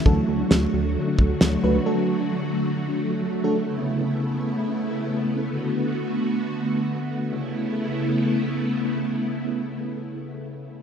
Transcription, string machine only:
\new Staff \with { instrumentName = "String machine" } { \time 4/4 \key a \major \tempo 4 = 133 << { <d fis fis'>1~ | <d fis fis'>1 | <cis e'>1 | <d fis'>1 |
<cis a b e'>1~ | <cis a b e'>1 | } \\ { a1~ | a1 | b1~ | b1 |
r1 | r1 | } >> }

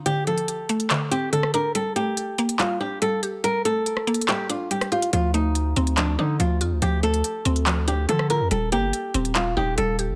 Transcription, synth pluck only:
\new Staff \with { instrumentName = "Synth pluck" } { \time 4/4 \key d \phrygian \tempo 4 = 142 <d c' d'>8 f4 a8 d8 c'8 d8 d'8 | g8 a4 bes8 g8 d'8 g8 g'8 | g8 a4 bes8 g8 d'8 g8 g'8 | f8 a4 c'8 f8 d'8 f8 f'8 |
f8 a4 c'8 f8 d'8 f8 f'8 | g8 bes4 c'8 g8 ees'8 g8 g'8 | }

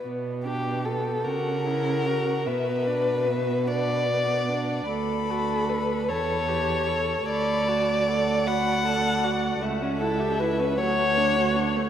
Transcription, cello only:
\new Staff \with { instrumentName = "Cello" } { \clef bass \time 6/8 \key b \minor \tempo 4. = 50 b,4. cis4. | b,2. | d,4. e,4. | d,2. |
\key d \major cis,4. d,4. | }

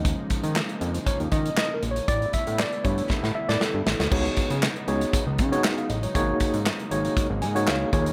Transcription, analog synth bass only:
\new Staff \with { instrumentName = "Analog synth bass" } { \clef bass \time 4/4 \key des \mixolydian \tempo 4 = 118 ees,8 r16 ees8 r16 f,8 r16 ees,16 ees8 r8 bes,,8 | a,,8 r16 a,8 r16 g,8 r16 a,16 r16 a,16 r16 g,16 a,,16 d,16 | des,8 r16 des8 r16 des,8 r16 des,16 des8 r8 a,,8 | aes,,8 r16 aes,8 r16 aes,,8 r16 aes,,16 aes,8 des,8 ees,8 | }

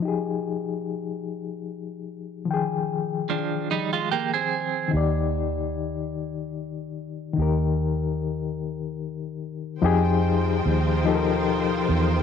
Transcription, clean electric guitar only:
\new Staff \with { instrumentName = "Clean electric guitar" } { \time 6/8 \key f \dorian \tempo 4. = 49 r2. | r4 <f d'>8 <g ees'>16 <aes f'>16 <bes g'>16 <c' aes'>8. | r2. | r2. |
r2. | }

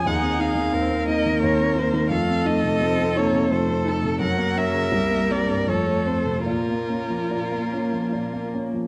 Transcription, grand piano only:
\new Staff \with { instrumentName = "Grand piano" } { \clef bass \time 3/4 \key bes \minor \tempo 4 = 85 ees,16 c'16 ees'16 ees16 ees,16 c'16 ees'16 ees16 ees,16 c'16 ees'16 ees16 | f,16 c'16 ees'16 c16 f,16 c'16 ees'16 c16 f,16 c'16 ees'16 c16 | ges,16 bes16 des'16 des16 c,16 bes16 c'16 g,16 f,16 a16 c'16 c16 | bes,16 bes16 des'16 f16 bes,16 bes16 des'16 f16 bes,16 bes16 des'16 f16 | }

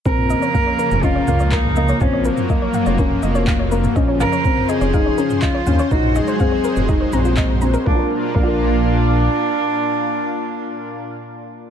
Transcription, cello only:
\new Staff \with { instrumentName = "Cello" } { \time 4/4 \key ges \lydian \tempo 4 = 123 bes'2 f'4 ees'4 | des'8 bes2. r8 | r8 bes'4 aes'4. f'4 | ges'8 aes'2 r4. |
d'8 r8 d'2.~ | d'1 | }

